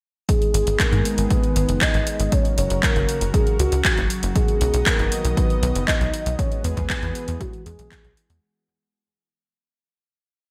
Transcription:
0.29 analog synth pad D#3 G#3 B3 G#4, soft synth lead G#4, kick, closed hi-hat
0.42 closed hi-hat
0.54 analog synth bass G#1, closed hi-hat
0.67 analog synth bass G#1, closed hi-hat
0.80 soft synth lead A#4, kick, clap, closed hi-hat
0.92 analog synth bass G#2, closed hi-hat
1.05 closed hi-hat
1.18 analog synth bass G#1, closed hi-hat
1.31 soft synth lead B4, kick, closed hi-hat
1.44 closed hi-hat
1.56 analog synth bass G#1, closed hi-hat
1.69 analog synth bass F#1, closed hi-hat
1.81 soft synth lead D#5, kick, clap, closed hi-hat
1.94 analog synth bass G#1, closed hi-hat
2.07 closed hi-hat
2.20 analog synth bass G#1, closed hi-hat
2.32 analog synth pad C#3 F#3 F#4 A#4, soft synth lead C#5, kick, closed hi-hat
2.45 closed hi-hat
2.58 analog synth bass F#1, soft synth lead C#5, closed hi-hat
2.70 analog synth bass F#1, closed hi-hat
2.83 soft synth lead A#4, kick, clap, closed hi-hat
2.96 analog synth bass F#1, closed hi-hat
3.09 closed hi-hat
3.21 analog synth bass F#1, closed hi-hat
3.34 soft synth lead G#4, kick, closed hi-hat
3.47 closed hi-hat
3.59 analog synth bass C#2, soft synth lead F#4, closed hi-hat
3.72 analog synth bass C#2, closed hi-hat
3.85 kick, clap, closed hi-hat
3.97 analog synth bass F#1, closed hi-hat
4.10 closed hi-hat
4.23 analog synth bass F#1, closed hi-hat
4.35 analog synth pad D#3 B3 D#5, soft synth lead G#4, kick, closed hi-hat
4.48 closed hi-hat
4.61 analog synth bass B1, closed hi-hat
4.74 analog synth bass B1, closed hi-hat
4.86 soft synth lead A#4, kick, clap, closed hi-hat
4.99 analog synth bass F#1, closed hi-hat
5.12 closed hi-hat
5.25 analog synth bass B1, closed hi-hat
5.37 soft synth lead B4, kick, closed hi-hat
5.50 closed hi-hat
5.63 analog synth bass B1, closed hi-hat
5.75 analog synth bass F#1, closed hi-hat
5.87 soft synth lead D#5, kick, clap, closed hi-hat
6.01 analog synth bass B1, closed hi-hat
6.14 closed hi-hat
6.26 analog synth bass B1, closed hi-hat
6.38 analog synth pad E3 G#3 B3 G#4, soft synth lead C#5, kick, closed hi-hat
6.52 closed hi-hat
6.64 analog synth bass E2, soft synth lead B4, closed hi-hat
6.77 analog synth bass E2, kick, closed hi-hat
6.89 soft synth lead B4, kick, clap, closed hi-hat
7.03 analog synth bass E2, closed hi-hat
7.15 closed hi-hat
7.28 analog synth bass E2, closed hi-hat
7.40 soft synth lead F#4, kick, closed hi-hat
7.53 closed hi-hat
7.66 analog synth bass E2, soft synth lead G#4, closed hi-hat
7.79 analog synth bass B1, closed hi-hat
7.92 kick, clap, closed hi-hat
8.04 analog synth bass B1, closed hi-hat
8.17 closed hi-hat
8.30 analog synth bass E2, closed hi-hat

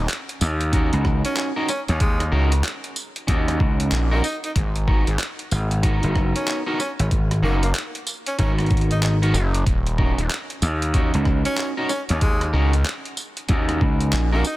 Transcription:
0.09 clap, closed hi-hat
0.29 closed hi-hat
0.41 slap bass D#2, tambourine
0.61 closed hi-hat
0.72 clean electric guitar C#4 D#4 F#4 A#4, kick, closed hi-hat
0.93 slap bass C#2, closed hi-hat
1.05 kick, cross-stick
1.25 tenor saxophone C#4, closed hi-hat
1.37 clap, closed hi-hat
1.56 clean electric guitar C#4 D#4 F#4 A#4
1.69 tenor saxophone C#4, cross-stick, tambourine
1.88 slap bass D#2, tenor saxophone C#4, closed hi-hat
2.00 tenor saxophone G#3, kick, closed hi-hat
2.20 cross-stick, closed hi-hat
2.32 analog synth bass C#2, clean electric guitar C#4 D#4 F#4 A#4
2.52 closed hi-hat
2.64 clap, closed hi-hat
2.84 closed hi-hat
2.96 tambourine
3.16 closed hi-hat
3.27 slap bass D#2, clean electric guitar C#4 D#4 F#4 A#4, kick, closed hi-hat
3.48 cross-stick, closed hi-hat
3.60 slap bass C#2, kick
3.80 closed hi-hat
3.92 analog synth bass A#1, clap, closed hi-hat
4.11 tenor saxophone A#3, clean electric guitar C#4 D#4 F#4 A#4
4.24 tenor saxophone D#4, tambourine
4.44 tenor saxophone D#4, closed hi-hat
4.56 analog synth bass G#1, kick, closed hi-hat
4.76 closed hi-hat
4.87 clean electric guitar B3 D#4 F#4 A#4, kick
5.07 analog synth bass G#1, closed hi-hat
5.19 clap, closed hi-hat
5.39 closed hi-hat
5.51 slap bass G#1, tambourine
5.71 closed hi-hat
5.83 clean electric guitar B3 D#4 F#4 A#4, kick, closed hi-hat
6.03 slap bass F#1, closed hi-hat
6.15 kick, cross-stick
6.36 tenor saxophone C#4, closed hi-hat
6.48 clap, closed hi-hat
6.66 clean electric guitar B3 D#4 F#4 A#4
6.80 tenor saxophone C#4, cross-stick, tambourine
6.99 slap bass G#1, tenor saxophone C#4, closed hi-hat
7.11 kick, closed hi-hat
7.31 cross-stick, closed hi-hat
7.43 analog synth bass F#1, tenor saxophone A#3, clean electric guitar B3 D#4 F#4 A#4
7.63 tenor saxophone A#3, closed hi-hat
7.75 clap, closed hi-hat
7.95 closed hi-hat
8.07 tambourine
8.26 tenor saxophone C#4, closed hi-hat
8.38 slap bass G#1, clean electric guitar B3 D#4 F#4 A#4, tenor saxophone C#4, kick, closed hi-hat
8.59 cross-stick, closed hi-hat
8.60 closed hi-hat
8.66 closed hi-hat
8.70 kick, closed hi-hat
8.77 closed hi-hat
8.81 closed hi-hat
8.91 tenor saxophone D#4, closed hi-hat
9.02 tenor saxophone D#4, clap, closed hi-hat
9.22 clean electric guitar B3 D#4 F#4 A#4, closed hi-hat
9.34 analog synth bass F#1, tambourine
9.54 closed hi-hat
9.66 analog synth bass D#1, kick, closed hi-hat
9.87 closed hi-hat
9.98 clean electric guitar C#4 D#4 F#4 A#4, kick
10.18 analog synth bass D#1, closed hi-hat
10.30 clap, closed hi-hat
10.50 closed hi-hat
10.62 slap bass D#2, tambourine
10.82 closed hi-hat
10.94 clean electric guitar C#4 D#4 F#4 A#4, kick, closed hi-hat
11.14 slap bass C#2, closed hi-hat
11.25 kick, cross-stick
11.45 tenor saxophone C#4, closed hi-hat
11.57 clap, closed hi-hat
11.77 clean electric guitar C#4 D#4 F#4 A#4
11.89 tenor saxophone C#4, cross-stick, tambourine
12.09 slap bass D#2, tenor saxophone C#4, closed hi-hat
12.21 tenor saxophone G#3, kick, closed hi-hat
12.41 cross-stick, closed hi-hat
12.53 analog synth bass C#2, clean electric guitar C#4 D#4 F#4 A#4
12.73 closed hi-hat
12.85 clap, closed hi-hat
13.05 closed hi-hat
13.17 tambourine
13.37 closed hi-hat
13.49 slap bass D#2, clean electric guitar C#4 D#4 F#4 A#4, kick, closed hi-hat
13.69 cross-stick, closed hi-hat
13.81 slap bass C#2, kick
14.01 closed hi-hat
14.13 analog synth bass A#1, clap, closed hi-hat
14.32 tenor saxophone A#3, clean electric guitar C#4 D#4 F#4 A#4
14.45 tenor saxophone D#4, tambourine

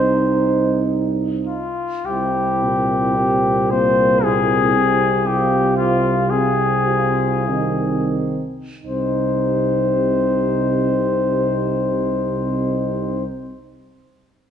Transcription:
Already playing: tuba C2, trombone C4, euphonium D#4, french horn section D#4, flugelhorn C5
1.47 flugelhorn F4
2.05 tuba C2, trombone C3, euphonium C4, french horn section E4, flugelhorn G4
2.63 trombone A#2
3.16 euphonium C4, french horn section G4
3.71 euphonium A#3, flugelhorn C5
4.23 trombone A#2, euphonium C4, french horn section E4, flugelhorn G#4
4.76 trombone C3
5.24 trombone C3, euphonium C4, french horn section F4, flugelhorn G4
5.77 flugelhorn F4
6.29 euphonium C4, french horn section G4, flugelhorn G#4
6.86 french horn section F4
7.47 trombone D#3, euphonium C4, french horn section D#4
8.84 tuba C2, trombone C3, euphonium C4, french horn section D#4, flugelhorn C5

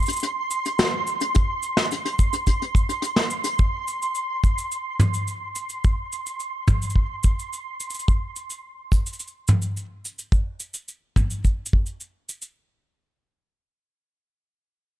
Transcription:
Already playing: synth texture C6
0.02 cabasa
0.06 closed hi-hat, cabasa
0.09 cabasa
0.13 cabasa
0.16 cabasa
0.20 closed hi-hat, cabasa
0.23 cabasa
0.51 cabasa
0.66 closed hi-hat, cabasa
0.79 snare, closed hi-hat, cabasa
1.07 cabasa
1.21 closed hi-hat, cabasa
1.35 kick, closed hi-hat, cabasa
1.63 cabasa
1.77 snare
1.91 closed hi-hat, cabasa
2.05 closed hi-hat
2.19 kick, cabasa
2.33 closed hi-hat, cabasa
2.47 kick, closed hi-hat, cabasa
2.62 closed hi-hat
2.75 kick, cabasa
2.89 closed hi-hat, cabasa
3.02 closed hi-hat, cabasa
3.16 snare
3.30 cabasa
3.44 closed hi-hat, cabasa
3.59 kick, cabasa
3.88 cabasa
4.02 cabasa
4.15 cabasa
4.44 kick, cabasa
4.58 cabasa
4.72 cabasa
5.00 mid tom, cabasa
5.14 cabasa
5.28 cabasa
5.55 cabasa
5.70 cabasa
5.84 kick, cabasa
6.12 cabasa
6.26 cabasa
6.40 cabasa
6.68 kick, mid tom, cabasa
6.82 cabasa
6.90 cabasa
6.96 kick
7.23 kick, cabasa
7.39 cabasa
7.53 cabasa
7.80 cabasa
7.90 cabasa
7.94 cabasa
7.99 cabasa
8.08 kick, cabasa
8.36 cabasa
8.50 cabasa
8.92 kick, cabasa
9.06 cabasa
9.13 cabasa
9.19 cabasa
9.27 cabasa
9.48 mid tom, cabasa
9.62 cabasa
9.77 cabasa
10.05 cabasa
10.19 cabasa
10.32 kick, cabasa
10.60 cabasa
10.74 cabasa
10.88 cabasa
11.16 kick, mid tom, cabasa
11.30 cabasa
11.45 kick, cabasa
11.66 cabasa
11.73 kick
11.86 cabasa
12.00 cabasa
12.29 cabasa
12.42 cabasa

